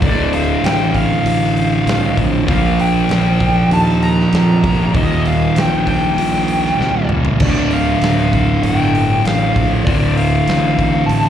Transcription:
0.02 0.54 D1 medium
0.02 2.47 D2 medium
0.02 2.48 A2 loud
0.02 0.34 D5 loud
0.02 kick loud
0.02 open hi-hat medium
0.06 2.49 D3 loud
0.33 0.65 F5 medium
0.33 open hi-hat medium
0.64 1.16 A1 medium
0.64 0.93 G5 medium
0.64 snare loud
0.64 open hi-hat medium
0.95 2.14 F5 medium
0.95 kick medium
0.95 open hi-hat medium
1.25 1.77 A1 loud
1.25 open hi-hat medium
1.44 snare soft
1.57 open hi-hat medium
1.86 2.13 C2 loud
1.86 snare loud
1.86 open hi-hat medium
2.17 2.44 A#1 medium
2.17 kick medium
2.17 open hi-hat medium
2.47 3.00 A#1 medium
2.47 4.93 A#2 medium
2.47 4.93 F3 loud
2.47 4.94 A#3 loud
2.47 2.80 F5 loud
2.47 kick loud
2.47 open hi-hat medium
2.79 3.68 G5 loud
2.79 open hi-hat medium
3.09 3.62 A#1 medium
3.09 snare loud
3.09 open hi-hat medium
3.40 kick medium
3.40 open hi-hat medium
3.71 4.23 D#2 loud
3.71 4.03 A5 loud
3.71 open hi-hat medium
3.89 snare soft
4.03 4.91 A#5 loud
4.03 open hi-hat medium
4.20 snare soft
4.33 4.59 F2 loud
4.33 snare loud
4.33 open hi-hat medium
4.64 4.90 F1 medium
4.64 kick medium
4.64 open hi-hat medium
4.93 5.47 D#1 medium
4.93 7.38 D#2 medium
4.93 7.39 A#2 medium
4.93 7.40 D#3 medium
4.93 5.27 D#5 loud
4.93 kick loud
4.93 open hi-hat medium
5.26 5.58 F5 medium
5.26 open hi-hat medium
5.56 6.09 A#1 medium
5.56 5.88 G5 medium
5.56 snare loud
5.56 open hi-hat medium
5.87 7.07 G5 medium
5.87 kick medium
5.87 open hi-hat medium
6.18 6.70 A#1 loud
6.18 open hi-hat loud
6.35 snare soft
6.48 open hi-hat medium
6.66 snare soft
6.79 7.05 C2 medium
6.79 snare medium
7.09 7.36 C#2 medium
7.09 mid tom medium
7.25 floor tom medium
7.40 7.93 D1 loud
7.40 9.85 D2 loud
7.40 7.73 D5 medium
7.40 kick loud
7.40 crash loud
7.44 9.86 A2 loud
7.44 9.87 D3 loud
7.71 8.63 F5 medium
7.71 open hi-hat medium
8.02 8.54 D1 medium
8.02 snare loud
8.02 open hi-hat medium
8.33 kick medium
8.33 open hi-hat medium
8.63 9.16 G1 loud
8.63 9.26 G5 loud
8.63 open hi-hat medium
8.82 snare soft
8.95 open hi-hat medium
9.25 9.51 A1 medium
9.25 9.69 F5 loud
9.25 snare loud
9.25 open hi-hat medium
9.56 9.82 A#1 medium
9.56 kick medium
9.56 open hi-hat medium
9.85 10.39 D1 medium
9.85 11.29 D2 loud
9.85 11.29 A2 loud
9.85 10.14 D5 loud
9.85 kick loud
9.85 open hi-hat medium
9.90 11.29 D3 loud
10.17 11.12 F5 medium
10.17 open hi-hat medium
10.47 10.99 A1 medium
10.47 snare loud
10.47 open hi-hat medium
10.79 kick medium
10.79 open hi-hat medium
11.06 11.29 A1 loud
11.06 11.29 A5 medium
11.06 open hi-hat medium

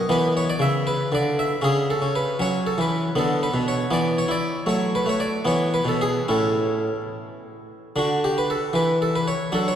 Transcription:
0.09 0.50 E3 medium
0.09 1.58 B3 soft
0.09 0.32 B4 medium
0.37 0.48 C#5 medium
0.50 0.61 D5 medium
0.59 1.01 C#3 soft
0.59 0.86 E5 medium
0.87 1.12 B4 medium
1.12 1.52 D3 medium
1.12 1.38 D5 medium
1.39 1.60 E5 medium
1.62 1.93 C#3 soft
1.62 2.01 C#4 soft
1.62 1.85 G#4 medium
1.90 2.11 A4 medium
2.02 2.32 C#4 soft
2.15 2.36 B4 medium
2.39 2.70 F#3 medium
2.39 3.11 C#4 soft
2.39 2.62 C#5 medium
2.67 2.78 A4 medium
2.78 3.08 E3 soft
2.78 3.11 B4 medium
3.16 3.45 D3 soft
3.16 3.87 B3 soft
3.16 3.42 A4 medium
3.43 3.63 B4 medium
3.54 3.83 B2 soft
3.68 3.88 C#5 medium
3.91 4.20 E3 medium
3.91 4.62 B3 soft
3.91 4.17 D5 medium
4.18 4.29 C#5 medium
4.28 4.58 E4 soft
4.28 4.62 D5 medium
4.66 4.97 F#3 soft
4.66 5.05 A3 soft
4.66 4.89 C#5 medium
4.95 5.06 B4 medium
5.06 5.37 A3 soft
5.06 5.20 C#5 medium
5.20 5.45 D5 medium
5.45 5.77 E3 soft
5.45 6.23 B3 soft
5.45 5.72 C#5 medium
5.74 5.86 B4 medium
5.85 6.18 B2 soft
5.85 6.00 A4 medium
6.01 6.24 G#4 medium
6.28 6.87 A2 soft
6.28 6.95 C#4 soft
6.28 6.95 E4 soft
6.28 7.01 A4 medium
7.96 8.52 D3 soft
7.96 8.70 D4 soft
7.96 8.19 F#4 medium
8.24 8.36 G4 medium
8.38 8.49 B4 medium
8.50 8.71 A4 medium
8.73 9.30 E3 medium
8.73 8.97 B4 medium
9.02 9.14 A4 medium
9.16 9.27 B4 medium
9.28 9.53 C#5 medium
9.52 9.75 F#3 soft
9.52 9.75 D4 soft
9.52 9.67 A4 medium
9.68 9.75 C#5 medium

